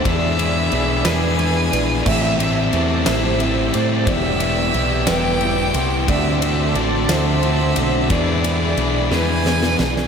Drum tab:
CC |------------|x-----------|------------|------------|
RD |x-x-x-x-x-x-|--x-x-x-x-x-|x-x-x-x-x-x-|x-x-x-x-x-x-|
SD |------o-----|------o-----|------o-----|------o-----|
BD |o-----------|o-----------|o-----------|o-----------|

CC |------------|
RD |x-x-x-------|
SD |------o-oooo|
BD |o-----------|